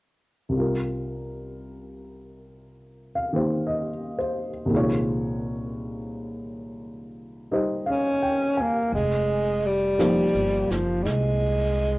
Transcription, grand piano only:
0, 0, Header, 1, 2, 480
1, 0, Start_track
1, 0, Key_signature, -4, "minor"
1, 0, Tempo, 1061947
1, 243, Time_signature, 4, 2, 24, 8
1, 722, Tempo, 1039861
1, 3122, Tempo, 1063830
1, 5463, End_track
2, 0, Start_track
2, 0, Title_t, "Grand piano"
2, 0, Program_c, 0, 0
2, 222, Note_on_c, 0, 36, 27
2, 235, Note_on_c, 0, 48, 23
2, 249, Note_on_c, 0, 55, 25
2, 258, Note_on_c, 0, 65, 24
2, 271, Note_on_c, 0, 70, 29
2, 330, Control_c, 0, 64, 127
2, 1440, Note_on_c, 0, 77, 30
2, 1519, Note_on_c, 0, 51, 27
2, 1523, Note_on_c, 0, 58, 25
2, 1529, Note_on_c, 0, 67, 26
2, 1536, Note_on_c, 0, 72, 32
2, 1677, Note_on_c, 0, 75, 32
2, 1781, Note_off_c, 0, 77, 0
2, 1910, Note_off_c, 0, 72, 0
2, 1917, Note_on_c, 0, 72, 35
2, 2062, Note_off_c, 0, 75, 0
2, 2127, Note_off_c, 0, 36, 0
2, 2133, Note_on_c, 0, 36, 36
2, 2146, Note_off_c, 0, 51, 0
2, 2146, Note_on_c, 0, 46, 32
2, 2153, Note_on_c, 0, 51, 34
2, 2155, Note_off_c, 0, 48, 0
2, 2158, Note_off_c, 0, 58, 0
2, 2160, Note_off_c, 0, 67, 0
2, 2162, Note_off_c, 0, 55, 0
2, 2164, Control_c, 0, 64, 0
2, 2165, Note_on_c, 0, 56, 33
2, 2166, Note_off_c, 0, 65, 0
2, 2173, Note_off_c, 0, 70, 0
2, 2174, Note_on_c, 0, 65, 36
2, 2184, Note_on_c, 0, 73, 41
2, 2234, Control_c, 0, 64, 127
2, 2259, Note_off_c, 0, 72, 0
2, 3445, Note_on_c, 0, 55, 26
2, 3447, Note_on_c, 0, 75, 28
2, 3449, Note_on_c, 0, 63, 27
2, 3453, Note_on_c, 0, 72, 33
2, 3603, Note_on_c, 0, 77, 30
2, 3695, Note_off_c, 0, 75, 0
2, 3766, Note_on_c, 0, 79, 31
2, 3911, Note_off_c, 0, 77, 0
2, 3923, Note_on_c, 0, 80, 34
2, 4015, Note_off_c, 0, 79, 0
2, 4071, Note_off_c, 0, 36, 0
2, 4077, Note_off_c, 0, 46, 0
2, 4080, Note_off_c, 0, 51, 0
2, 4082, Note_off_c, 0, 55, 0
2, 4084, Note_off_c, 0, 63, 0
2, 4086, Note_off_c, 0, 56, 0
2, 4087, Note_off_c, 0, 72, 0
2, 4090, Control_c, 0, 64, 0
2, 4091, Note_off_c, 0, 65, 0
2, 4096, Note_off_c, 0, 73, 0
2, 4157, Control_c, 0, 64, 127
2, 4174, Note_off_c, 0, 80, 0
2, 4563, Note_on_c, 0, 53, 35
2, 4568, Note_on_c, 0, 58, 32
2, 4568, Note_on_c, 0, 63, 33
2, 4570, Note_on_c, 0, 67, 32
2, 4571, Note_on_c, 0, 72, 37
2, 5463, Note_off_c, 0, 53, 0
2, 5463, Note_off_c, 0, 58, 0
2, 5463, Note_off_c, 0, 63, 0
2, 5463, Note_off_c, 0, 67, 0
2, 5463, Note_off_c, 0, 72, 0
2, 5463, End_track
0, 0, End_of_file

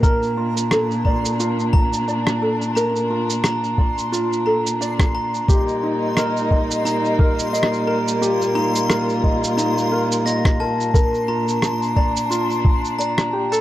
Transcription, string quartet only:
0, 0, Header, 1, 2, 480
1, 0, Start_track
1, 0, Key_signature, -2, "major"
1, 0, Tempo, 681818
1, 23, Time_signature, 4, 2, 24, 8
1, 9580, End_track
2, 0, Start_track
2, 0, Title_t, "String quartet"
2, 0, Program_c, 0, 48
2, 0, Note_on_c, 0, 46, 77
2, 20, Note_on_c, 0, 62, 80
2, 3833, Note_off_c, 0, 62, 0
2, 3835, Note_off_c, 0, 46, 0
2, 3863, Note_on_c, 0, 58, 74
2, 3863, Note_on_c, 0, 63, 91
2, 3864, Note_on_c, 0, 46, 75
2, 3864, Note_on_c, 0, 55, 74
2, 5764, Note_off_c, 0, 63, 0
2, 5784, Note_on_c, 0, 65, 81
2, 7675, Note_off_c, 0, 55, 0
2, 7675, Note_off_c, 0, 58, 0
2, 7684, Note_off_c, 0, 65, 0
2, 7702, Note_on_c, 0, 62, 80
2, 9580, Note_off_c, 0, 46, 0
2, 9580, Note_off_c, 0, 62, 0
2, 9580, End_track
0, 0, End_of_file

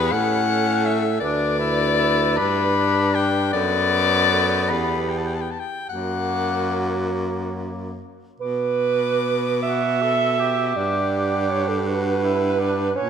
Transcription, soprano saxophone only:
0, 0, Header, 1, 2, 480
1, 0, Start_track
1, 0, Key_signature, 2, "minor"
1, 0, Tempo, 732601
1, 798, Time_signature, 6, 3, 24, 8
1, 798, Tempo, 775194
1, 3198, Tempo, 827586
1, 5118, Tempo, 805369
1, 6078, Tempo, 735294
1, 8090, End_track
2, 0, Start_track
2, 0, Title_t, "Soprano saxophone"
2, 0, Program_c, 0, 64
2, 0, Note_on_c, 0, 71, 118
2, 80, Note_on_c, 0, 78, 117
2, 90, Note_off_c, 0, 71, 0
2, 560, Note_on_c, 0, 76, 91
2, 569, Note_off_c, 0, 78, 0
2, 782, Note_off_c, 0, 76, 0
2, 786, Note_on_c, 0, 74, 115
2, 1514, Note_on_c, 0, 83, 106
2, 1523, Note_off_c, 0, 74, 0
2, 1992, Note_on_c, 0, 79, 95
2, 2001, Note_off_c, 0, 83, 0
2, 2225, Note_off_c, 0, 79, 0
2, 2229, Note_on_c, 0, 74, 122
2, 2951, Note_on_c, 0, 83, 92
2, 2961, Note_off_c, 0, 74, 0
2, 3196, Note_on_c, 0, 79, 67
2, 3205, Note_off_c, 0, 83, 0
2, 3244, Note_on_c, 0, 81, 65
2, 3253, Note_off_c, 0, 79, 0
2, 3297, Note_on_c, 0, 79, 69
2, 3306, Note_off_c, 0, 81, 0
2, 3343, Note_on_c, 0, 81, 71
2, 3352, Note_off_c, 0, 79, 0
2, 3385, Note_on_c, 0, 79, 65
2, 3393, Note_off_c, 0, 81, 0
2, 3438, Note_on_c, 0, 81, 64
2, 3447, Note_off_c, 0, 79, 0
2, 3489, Note_on_c, 0, 79, 82
2, 3498, Note_off_c, 0, 81, 0
2, 3656, Note_off_c, 0, 79, 0
2, 3659, Note_on_c, 0, 78, 98
2, 4374, Note_off_c, 0, 78, 0
2, 5126, Note_on_c, 0, 86, 79
2, 6056, Note_off_c, 0, 86, 0
2, 6096, Note_on_c, 0, 76, 56
2, 6579, Note_on_c, 0, 78, 67
2, 6589, Note_off_c, 0, 76, 0
2, 7288, Note_off_c, 0, 78, 0
2, 7292, Note_on_c, 0, 78, 63
2, 7985, Note_off_c, 0, 78, 0
2, 8010, Note_on_c, 0, 78, 66
2, 8090, Note_off_c, 0, 78, 0
2, 8090, End_track
0, 0, End_of_file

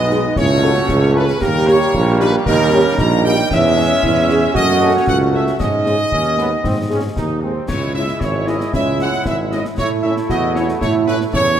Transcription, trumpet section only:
0, 0, Header, 1, 2, 480
1, 0, Start_track
1, 0, Tempo, 522193
1, 339, Time_signature, 2, 2, 24, 8
1, 10662, End_track
2, 0, Start_track
2, 0, Title_t, "Trumpet section"
2, 0, Program_c, 0, 61
2, 0, Note_on_c, 0, 75, 126
2, 335, Note_on_c, 0, 73, 127
2, 343, Note_off_c, 0, 75, 0
2, 1022, Note_off_c, 0, 73, 0
2, 1056, Note_on_c, 0, 71, 116
2, 1299, Note_off_c, 0, 71, 0
2, 1304, Note_on_c, 0, 70, 127
2, 1542, Note_off_c, 0, 70, 0
2, 1544, Note_on_c, 0, 73, 127
2, 2023, Note_off_c, 0, 73, 0
2, 2024, Note_on_c, 0, 71, 120
2, 2131, Note_off_c, 0, 71, 0
2, 2269, Note_on_c, 0, 70, 127
2, 2712, Note_off_c, 0, 70, 0
2, 2752, Note_on_c, 0, 82, 127
2, 2986, Note_on_c, 0, 79, 125
2, 2987, Note_off_c, 0, 82, 0
2, 3208, Note_off_c, 0, 79, 0
2, 3236, Note_on_c, 0, 76, 127
2, 4154, Note_off_c, 0, 76, 0
2, 4183, Note_on_c, 0, 75, 127
2, 4519, Note_off_c, 0, 75, 0
2, 4557, Note_on_c, 0, 73, 111
2, 4665, Note_on_c, 0, 78, 113
2, 4671, Note_off_c, 0, 73, 0
2, 4773, Note_off_c, 0, 78, 0
2, 4905, Note_on_c, 0, 76, 95
2, 5128, Note_off_c, 0, 76, 0
2, 5141, Note_on_c, 0, 75, 127
2, 6787, Note_off_c, 0, 75, 0
2, 7061, Note_on_c, 0, 73, 113
2, 7286, Note_off_c, 0, 73, 0
2, 7297, Note_on_c, 0, 76, 104
2, 7524, Note_off_c, 0, 76, 0
2, 7540, Note_on_c, 0, 73, 100
2, 7782, Note_off_c, 0, 73, 0
2, 7787, Note_on_c, 0, 75, 101
2, 8024, Note_on_c, 0, 76, 109
2, 8026, Note_off_c, 0, 75, 0
2, 8247, Note_off_c, 0, 76, 0
2, 8275, Note_on_c, 0, 78, 106
2, 8493, Note_off_c, 0, 78, 0
2, 8518, Note_on_c, 0, 76, 105
2, 8623, Note_off_c, 0, 76, 0
2, 8744, Note_on_c, 0, 75, 101
2, 8852, Note_off_c, 0, 75, 0
2, 8982, Note_on_c, 0, 73, 117
2, 9090, Note_off_c, 0, 73, 0
2, 9214, Note_on_c, 0, 76, 101
2, 9324, Note_off_c, 0, 76, 0
2, 9455, Note_on_c, 0, 75, 108
2, 9682, Note_off_c, 0, 75, 0
2, 9700, Note_on_c, 0, 73, 99
2, 9809, Note_off_c, 0, 73, 0
2, 9937, Note_on_c, 0, 73, 116
2, 10046, Note_off_c, 0, 73, 0
2, 10178, Note_on_c, 0, 71, 113
2, 10287, Note_off_c, 0, 71, 0
2, 10422, Note_on_c, 0, 73, 127
2, 10662, Note_off_c, 0, 73, 0
2, 10662, End_track
0, 0, End_of_file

